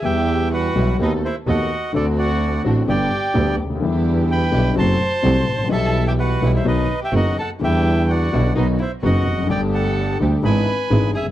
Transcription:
0.02 E2 E3 G3 B3 E4 G4 E5 G5
0.53 F#4 B4 F#5
0.76 B1 B2 E3 G3 B3 E4 F#4
0.99 D#2 D#3 A3 B3 D#4 F#4 A4 B4 D#5
1.25 E4 C5 E5
1.47 D#2 D#3 A3 B3 D#4 F#4 A4 D#5 F#5
1.93 D2 D3 A3 C4 D4 F#4 A4 D5
2.18 F#4 D5 F#5
2.64 A1 A2 D3 A3 C4 D4 F#4
2.87 G1 G2 D3 G3 B3 D4 G4 D5 G5
3.34 D2 D3 G3 B3 D4 G4
3.59 D2
3.64 C#2
3.70 D2
3.75 D#2
3.80 E2 D3 E3 G3 B3 D4 E4 G4
3.84 E4
4.31 B4 G5 B5
4.52 B1 B2 D3 G3 B3 D4 E4 G4
4.75 F#1 F#2 C3 F#3 A3 C4 F#4 C5 A5
4.80 C6
5.23 C2 C3 F#3 A3 C4 F#4
5.47 A1
5.52 G#1
5.58 A1
5.64 A#1 E3
5.69 B1 B2 G3 B3 E4 G4 E5 A5
5.73 A4
6.07 G4 E5 G5
6.19 F#4 B4 F#5
6.41 B1 B2 E3 G3 B3 E4 G4
6.54 E4 C5 E5
6.65 B1 B2 D#3 F#3 B3 D#4 F#4 B4 D#5
7.02 G4 E5 G5
7.13 F#1 F#2 D#3 F#3 B3 D#4 F#4 D#5 F#5
7.39 A4 F#5 A5
7.59 E2 D3 E3 G3 B3 D4 E4 G4
7.64 E5 G5
8.09 F#4 D5 F#5
8.32 B1 B2 D3 G3 B3 D4 E4
8.55 B1 B2 D#3 F#3 B3 D#4 F#4 B4 D#5
8.79 E4 C5 E5
9.02 F#1 F#2 D#3 F#3 B3 D#4 F#4 D#5 F#5
9.26 F1
9.32 E2
9.39 F2
9.43 F#2 D3
9.49 G1 G2 G3 A3 D4 G4 D5 G5
9.74 A4 F#5 A5
10.20 D2 D3 G3 A3 D4 G4
10.43 G#1 G#2 E3 G#3 B3 D4 E4 G#4 B4 G#5 B5
10.90 G#1 G#2 E3 G#3 B3 D4 E4 G#4
11.13 G1 G#4 E5 G#5
11.20 F#1
11.26 G1

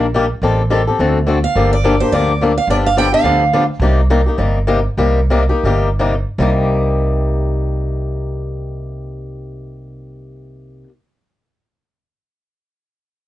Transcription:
Already playing: A#1
0.14 D#3 G3 A#3 D4 G4
0.42 A1 D#3 G3 C4 G4 A4
0.70 D#3 G3 C4 G4 A4
0.87 C4 G4 A4
0.99 D2 D3 A3 C4 F#4 A4
1.27 D3 A3 C4 F#4 A4
1.44 F5
1.55 G1 D3 F3 A#3 D4 G4
1.73 D5
1.84 D3 F3 A#3 D4 G4
2.00 A#3 D4 G4 C5
2.12 D2 D3 F3 A#3 D4 G4 D5
2.41 D3 F3 A#3 D4 G4
2.57 F5
2.67 G1 D3 F3 B3 D4 G4 D5
2.86 F5
2.97 D3 F3 B3 D4 G4 G5
3.12 B3 D4 G4 F5
3.23 D2 D3 F3 B3 D4 G4
3.54 D3 F3 B3 D4 G4
3.80 C2 C3 G3 A#3 D#4 G4
4.10 C3 G3 A#3 D#4 G4
4.26 A#3 D#4 G4
4.38 G1 C3 G3 A#3 D#4 G4
4.67 C3 G3 A#3 D#4 G4
4.97 C2 C3 G3 A#3 D#4 G4
5.30 C3 G3 A#3 D#4 G4
5.49 A#3 D#4 G4
5.63 G1 C3 G3 A#3 D#4 G4
5.99 C3 G3 A#3 D#4 G4
6.38 C2 C3 G3 A#3 D#4 G4

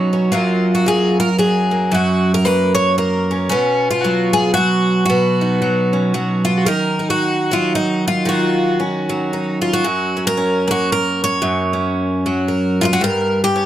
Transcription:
Already playing: B2 F#3 C#4 D#4
0.13 C#4
0.32 F#2 F#3 A#3 F4
0.75 F#4
0.86 F#3 G#4
1.20 A#4
1.38 F#3 G#4
1.71 A#3
1.92 F#2 F#4
2.34 A#4
2.45 A#3 B4
2.75 C#5
2.98 A#3 A#4
3.31 C#4
3.49 B2 C#4
3.91 F4
4.01 F#3 F#4
4.33 G#4
4.54 F#3 F#4
5.06 B2 F#4
5.41 D#4
5.62 F#3
5.93 C#4
6.14 F#3
6.45 F4
6.58 F#4
6.66 D#3 A#4
6.99 D#4
7.10 F#4
7.51 F#3 F4
7.75 D#4
8.08 F4
8.25 D#3 F#4
8.80 C#4
9.09 F#3
9.33 D#4
9.62 F4
9.73 F#4
9.84 F#2
10.17 C#4
10.27 A#4
10.37 C#4
10.67 A#3 F#4
10.92 A#4
11.24 C#5
11.42 F#2
11.73 C#4
12.26 F#3
12.48 A#4
12.81 D#4 F4
12.93 F#4
13.01 G2 A#4
13.44 G4
13.56 C#4

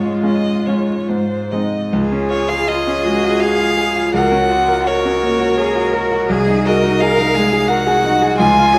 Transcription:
Already playing: G#2 G#3 C#4 F4 C#5
0.23 G#3 C#4 F4 D#5
0.67 G#3 C#4 F4 C#5
1.09 G#2 C5
1.51 G#3 C4 D#4 D#5
1.92 C#2 F4 G#4
2.12 C#4
2.30 F4 C#5
2.49 G#4 F5
2.67 F4 G#4 D#5
2.87 C#4
3.05 G#3 F#4
3.23 F4
3.40 F#4 G#4 F5
3.60 F4
3.77 G#4
3.96 F4
4.14 C#2 F#4 A#4 F#5
4.31 C#4
4.50 F4 F#4
4.68 A#4
4.87 F#4 A#4 C#5
5.05 C#4
5.23 A#3
5.40 F#4
5.58 G#4 A#4
5.75 F#4
5.93 F#4 A#4
6.12 F#4
6.29 C2 G#4
6.47 D#4
6.65 F#4 G#4 A#4 D#5
6.83 D#4
6.99 G#4 A#4 F5
7.18 D#4
7.34 G#3 G#4
7.53 G#4
7.68 F#4 A#4 F#5
7.87 G#4
8.04 D#4
8.22 G#4
8.37 C#2 F4 G#5
8.57 F4
8.73 G#4 C#5

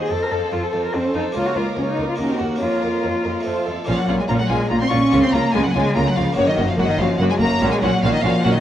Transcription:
Already playing: C5 F#5
0.00 G#4
0.06 C4
0.10 F2 A4 C5 A5
0.23 A#4
0.31 F2 A4 C5 F5
0.52 F2 F4 A4 C5 A5
0.63 A4
0.72 F2 A4 C5 F5
0.85 A#4
0.93 F2 C4 A4 C5 A5
1.05 C#4
1.14 F2 D#4 A4 C5 F5
1.32 C#2 A#3 F4 A#5
1.37 C#5
1.46 F#4
1.56 C#2 F4 A#4 F5
1.77 C#2 C#4 F4 C#5 A#5
1.89 D#4
1.97 C#2 A#4 F5
2.09 F4
2.16 D#2 A#3 C#4 D#4 F#4 A#4 D#5
2.30 C4
2.39 D#2 A#3 F#4 A#4 F#5
2.56 A#3 C#4
2.61 F2 F4 C#5 A#5
2.82 F2 A#4 F5
3.03 F2 F4 C#5 A#5
3.24 F2 A#4 F5
3.40 A3 C4
3.45 F2 F4 C5 A5
3.66 F2 A4 F5
3.85 A#1 A#2 F3 A#3 C#4 F5
3.89 F4
3.98 F#3 F#5
4.08 A#1 A#2 C#4 F4
4.19 G#3 G#5
4.28 A#1 A#2 A#3 C#4 F4 A#5
4.39 F#3 F#5
4.49 A#1 A#2 G#3 C#4 F4 G#5
4.69 A#1 A#2 A#3 C#4 F4 A#5
4.81 C4 C6
4.90 A#1 A#2 C#4 F4 C#6
5.10 C#2 C#3 A#3 F4
5.23 C4 C6
5.32 C#2 C#3 A#3 F4 A#5
5.52 C#2 C#3 G#3 A#3 F4 G#5
5.65 F#3 F#5
5.73 C#2 C#3 G#3 A#3 F4 G#5
5.94 C#2 C#3 A#3 F4 A#5
6.07 F#3 F#5
6.16 C#2 C#3 F3 A#3 F4 F5
6.33 A#3 F#4
6.37 F#1 F#2 C#3 A#3 C#5
6.48 D#3 D#5
6.58 F#1 F#2 A#3 F#4
6.69 F3 F5
6.77 F#1 F#2 F#3 A#3 F#4 F#5
6.88 D#3 D#5
6.99 F#1 F#2 F3 A#3 F#4 F5
7.19 F#1 F#2 F#3 A#3 F#4 F#5
7.29 G#3 G#5
7.39 F#1 F#2 A#3 A#5
7.44 F#4
7.57 A#1 A#3 C#4 F#4
7.62 A#2 F#4
7.70 G#3 G#5
7.80 A#1 A#2 F#3 C#4 F#5
7.85 F#4
8.02 A#1 A#2 F3 C#4 F#4 F5
8.12 D#3 D#5
8.22 A#1 A#2 F3 C#4 F#4 F5
8.43 A#1 A#2 F#3 C#4 F#4 F#5
8.54 D#3 D#5

